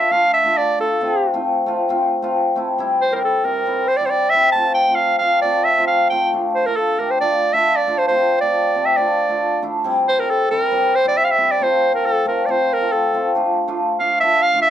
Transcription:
Already playing: clarinet E5
0.11 hammered dulcimer A3 D4 F4, clarinet F5
0.34 clarinet E5
0.44 hammered dulcimer A3 D4 F4
0.57 clarinet D5
0.79 hammered dulcimer A3 D4 F4, clarinet A4
1.01 hammered dulcimer A3 C4 F4
1.33 hammered dulcimer A3 C4 F4
1.66 hammered dulcimer A3 C4 F4
1.89 hammered dulcimer A3 C4 F4
2.22 hammered dulcimer A3 C4 F4
2.56 hammered dulcimer A3 C4 E4
2.78 hammered dulcimer G3 C4 E4
3.01 clarinet C5
3.12 hammered dulcimer G3 C4 E4, clarinet A#4 C5
3.17 clarinet A#4
3.25 clarinet A4
3.44 hammered dulcimer G3 C4 E4, clarinet A#4
3.66 hammered dulcimer G3 C4 E4
3.88 clarinet C5
3.97 hammered dulcimer G3 C4, clarinet D5
4.01 hammered dulcimer E4
4.06 clarinet C5
4.10 clarinet D5
4.30 hammered dulcimer G3, clarinet E5
4.34 hammered dulcimer C4 E4
4.53 hammered dulcimer A3 C4 F4, clarinet A5
4.74 clarinet G5
4.88 hammered dulcimer A3 C4 F4
4.95 clarinet F5
5.19 hammered dulcimer A3 C4 F4, clarinet F5
5.42 hammered dulcimer A3 C4 F4, clarinet D5
5.65 clarinet E5
5.77 hammered dulcimer A3 C4 F4
5.87 clarinet F5
6.10 hammered dulcimer A3 C4 F4, clarinet G5
6.33 hammered dulcimer A3 D4 F4
6.55 clarinet C5
6.66 hammered dulcimer A3 D4 F4, clarinet A#4
6.76 clarinet A4
6.98 hammered dulcimer A3 D4 G4, clarinet A#4
7.11 clarinet C5
7.21 hammered dulcimer A3 D4 F4, clarinet D5
7.54 hammered dulcimer A3 D4 F4, clarinet E5
7.76 clarinet D5
7.87 hammered dulcimer A3 D4 F4
7.98 clarinet C5
8.08 hammered dulcimer A3 C4 F4, clarinet C5
8.41 hammered dulcimer A3 C4 F4, clarinet D5
8.75 hammered dulcimer A3 C4 G4
8.86 clarinet E5
8.97 hammered dulcimer A3 D4 F4, clarinet D5
9.29 hammered dulcimer A3 D4 F4
9.62 hammered dulcimer A3 D4 E4
9.84 hammered dulcimer G3 C4 E4
10.08 clarinet C5
10.17 hammered dulcimer G3 C4 E4, clarinet A#4
10.30 clarinet A4
10.51 hammered dulcimer G3 C4 E4, clarinet A#4
10.72 hammered dulcimer G3 C4 E4
10.95 clarinet C5
11.05 hammered dulcimer G3 C4 E4, clarinet D5
11.18 clarinet E5
11.25 clarinet F5
11.31 clarinet E5
11.37 hammered dulcimer G3 C4 E4
11.52 clarinet D5
11.60 hammered dulcimer A3 C4 F4, clarinet C5
11.92 hammered dulcimer A3 C4 F4, clarinet A#4
12.06 clarinet A4
12.25 hammered dulcimer A3 C4 F4, clarinet A#4
12.46 hammered dulcimer A3 C4 F4, clarinet D5
12.51 clarinet C5
12.73 clarinet A#4
12.81 hammered dulcimer A3 C4 F4
12.92 clarinet A4
13.14 hammered dulcimer A3 C4 F4
13.35 hammered dulcimer A3 D4 F4
13.68 hammered dulcimer A3 D4 F4
14.00 hammered dulcimer A3 D4 F4, clarinet F5
14.20 hammered dulcimer A3 D4 F4, clarinet E5
14.43 clarinet F5
14.54 hammered dulcimer A3 D4 F4
14.62 clarinet E5

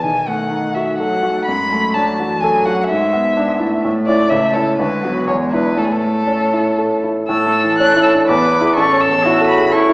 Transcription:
0.03 grand piano B1, cello D#3, violin G#5
0.27 grand piano A3, violin F#5
0.51 grand piano D#4
0.74 grand piano F#4, violin E5
0.98 cello F#3, grand piano A4, violin F#5
1.21 cello A3, grand piano F#4
1.45 grand piano F#2, cello G#3, violin B5
1.72 grand piano A3
1.94 cello F#3, grand piano D4, violin A5
2.17 cello E3, grand piano F#4
2.40 cello F#3, grand piano A4, violin G#5
2.65 grand piano F#4, violin F#5
2.81 violin F#5
2.87 grand piano G#2, cello G#3, violin E5
3.13 grand piano B3
3.35 cello G#3, grand piano D4
3.59 cello A3, grand piano E4
3.84 grand piano A2
4.07 grand piano C#4 E4, violin D5
4.30 grand piano C#2, cello A3, violin E5
4.54 grand piano C#4 E4, violin A4
4.78 grand piano D2, cello G#3, violin B4
5.03 cello F#3, grand piano B3 F#4
5.27 grand piano E2, cello G#3, violin C#5
5.52 grand piano D4 E4, violin B4
5.77 grand piano A2, cello A3, violin A4
5.85 violin G#4
5.92 violin A4
6.02 grand piano A3
6.27 grand piano C#4
6.53 grand piano E4
6.78 grand piano A4
7.04 grand piano E4
7.28 grand piano A2, cello A4, violin E6
7.46 grand piano A3
7.64 grand piano E3
7.79 grand piano C#4, violin F#6
7.96 grand piano E4
8.03 violin E6
8.13 grand piano D4
8.28 grand piano E2, cello B4, violin D6
8.45 grand piano B3
8.61 grand piano E4 G#4
8.75 grand piano A1, cello A4, violin C#6
8.93 grand piano C#4
9.01 violin E6
9.09 grand piano E2
9.24 grand piano E4, cello F#4
9.41 grand piano A4
9.48 violin B5
9.58 grand piano G#4
9.72 cello E4, grand piano A4, violin C#6
9.89 grand piano E4

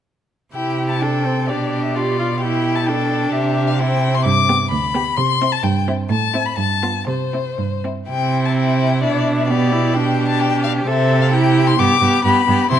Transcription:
0.53 cello C3, viola E4, violin G4 G5
0.90 violin A5
1.01 viola D4, violin A4 G5
1.25 viola C4
1.48 cello B2, viola D4, violin G4 D5
1.83 violin E5
1.95 violin F4 D5, viola G4
2.19 viola F4
2.40 viola E4, violin G4 G5
2.76 violin A5
2.87 viola D4, violin A4 G5
3.33 cello C3, violin G4 E5
3.68 violin F5
3.79 viola C4, violin E4 G5
4.15 violin C6
4.25 cello G2, violin D6
4.49 viola B3, violin G4
4.71 cello D2, violin B5
4.95 viola B3, violin G4
5.17 cello C3, violin C6
5.42 viola C4, violin E4
5.52 violin A5
5.63 cello G2, violin G5
5.88 viola C4, violin E4
6.10 cello A2, violin A5
6.34 viola C4, violin E4
6.46 violin B5
6.57 cello G2, violin A5
6.83 viola B3, violin F4
7.07 cello C3, violin C5
7.33 viola C4, violin E4
7.59 cello G2
7.84 viola C4, violin E4
8.09 cello C3, viola C4, violin E4 G5
8.45 violin A5
8.57 violin G5
9.03 cello B2, viola D4, violin D5
9.38 violin E5
9.48 viola B3, violin G4 D5
9.73 viola E4
9.94 viola D4, violin G4 G5
10.28 violin A5
10.40 violin G5
10.64 violin F5
10.86 cello C3, viola C4, violin A4 E5
11.22 violin F5
11.32 viola E4, violin G4 G5
11.67 violin C6
11.78 cello G2, viola B3, violin G4 D6
12.01 cello G2, viola B3, violin G4
12.25 cello G2, viola B3, violin G4 B5
12.48 cello G2, viola B3, violin G4
12.71 cello C3, viola C4, violin E4 C6

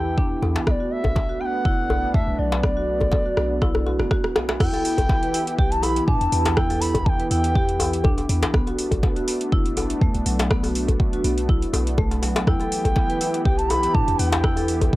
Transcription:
Already playing: 808-style bass E2, analog synth pad E3 B3 E4 G4, bansuri G5
0.18 marimba D4, kick
0.42 808-style bass E2, marimba B3, djembe tone
0.56 djembe slap
0.67 808-style bass B1, analog synth pad A3 B3 D4, marimba B3, bansuri E5, kick, cross-stick
0.71 bansuri D5
0.80 marimba F#4
0.92 bansuri E5
1.04 kick, djembe tone, djembe bass
1.15 kick, djembe slap, djembe tone
1.29 marimba F#4
1.41 marimba B3, bansuri G5
1.46 bansuri F#5
1.65 808-style bass F#1, marimba E4, kick
1.90 marimba B3, djembe tone, djembe bass
2.14 808-style bass E2, marimba A3, bansuri E5, kick
2.28 808-style bass B1
2.39 808-style bass B1, marimba F#3, bansuri D5
2.52 djembe slap
2.63 marimba B3, kick, cross-stick
2.77 marimba F#4
3.01 kick, djembe tone, djembe bass
3.12 kick, djembe slap, djembe tone
3.26 marimba F#4
3.37 808-style bass B1, marimba B3, cross-stick
3.62 marimba E4, kick, cross-stick, djembe tone
3.75 cross-stick, djembe bass
3.86 marimba F#4, djembe tone
4.00 808-style bass F#1, marimba B3, cross-stick
4.11 marimba F#4, kick, cross-stick
4.24 cross-stick
4.36 marimba B3, cross-stick, djembe slap, djembe tone
4.49 cross-stick, djembe slap
4.60 808-style bass E2, analog synth pad E3 B3 E4 G4, marimba E4, bansuri G5, kick, cross-stick, crash
4.73 marimba A4, closed hi-hat, djembe tone
4.85 open hi-hat
4.98 kick, closed hi-hat, djembe bass
5.09 kick, djembe slap
5.23 marimba B4, closed hi-hat
5.34 marimba E4, open hi-hat
5.47 closed hi-hat
5.58 808-style bass B1, marimba G4, bansuri G5, kick
5.71 bansuri A5, closed hi-hat
5.83 marimba E4, bansuri B5, open hi-hat, djembe tone
5.96 closed hi-hat
6.07 808-style bass A2, marimba D4, bansuri A5, kick
6.21 808-style bass E2, closed hi-hat
6.32 808-style bass E2, marimba B3, open hi-hat
6.45 closed hi-hat, djembe slap
6.56 marimba E4, bansuri G5, kick, cross-stick
6.70 marimba A4, open hi-hat, djembe tone
6.81 bansuri B5, open hi-hat
6.95 kick, closed hi-hat, djembe bass
7.05 bansuri G5 A5, kick
7.20 marimba B4, closed hi-hat
7.30 808-style bass E2, marimba E4, bansuri G5, open hi-hat
7.44 closed hi-hat
7.55 marimba G4, kick
7.69 closed hi-hat
7.80 marimba E4, open hi-hat, djembe tone
7.93 closed hi-hat
8.04 marimba D4, kick, djembe bass
8.18 closed hi-hat, djembe tone
8.29 808-style bass E2, marimba B3, open hi-hat, djembe tone
8.43 closed hi-hat, djembe slap
8.54 808-style bass B1, analog synth pad A3 B3 D4, marimba B3, kick, cross-stick
8.67 marimba F#4, closed hi-hat, djembe tone
8.79 open hi-hat
8.91 kick, closed hi-hat, djembe bass
9.03 kick, djembe slap
9.16 marimba F#4, closed hi-hat
9.28 marimba B3, open hi-hat
9.41 closed hi-hat
9.52 808-style bass F#1, marimba E4, kick
9.66 closed hi-hat
9.77 marimba B3, open hi-hat, djembe tone
9.90 closed hi-hat
10.01 808-style bass E2, marimba A3, kick
10.15 808-style bass B1, closed hi-hat
10.26 808-style bass B1, marimba F#3, open hi-hat
10.39 closed hi-hat, djembe slap
10.51 marimba B3, kick, cross-stick
10.63 marimba F#4, open hi-hat, djembe tone
10.75 open hi-hat
10.88 kick, closed hi-hat, djembe bass
11.00 kick
11.13 marimba F#4, closed hi-hat
11.24 808-style bass B1, marimba B3, open hi-hat
11.38 closed hi-hat
11.49 808-style bass B1, marimba E4, kick
11.62 closed hi-hat
11.73 808-style bass B1, marimba B3, open hi-hat, djembe tone
11.87 closed hi-hat
11.98 marimba A3, kick, djembe bass
12.11 closed hi-hat, djembe tone
12.22 marimba F#3, open hi-hat, djembe slap, djembe tone
12.36 closed hi-hat, djembe slap
12.47 808-style bass E2, analog synth pad E3 E4 G4, marimba E4, bansuri G5, kick, cross-stick
12.60 marimba A4, closed hi-hat, djembe tone
12.72 open hi-hat
12.85 kick, closed hi-hat, djembe bass
12.96 kick, djembe slap
13.10 marimba B4, closed hi-hat
13.21 marimba E4, open hi-hat
13.34 closed hi-hat
13.45 808-style bass B1, marimba G4, bansuri G5, kick
13.58 bansuri A5, closed hi-hat
13.69 marimba E4, bansuri B5, open hi-hat, djembe tone
13.83 closed hi-hat
13.94 808-style bass A2, marimba D4, bansuri A5, kick
14.08 808-style bass E2, closed hi-hat
14.19 808-style bass E2, marimba B3, bansuri G5, open hi-hat
14.32 closed hi-hat, djembe slap
14.44 marimba E4, kick, cross-stick
14.56 marimba A4, open hi-hat, djembe tone
14.68 open hi-hat
14.81 kick, closed hi-hat, djembe bass

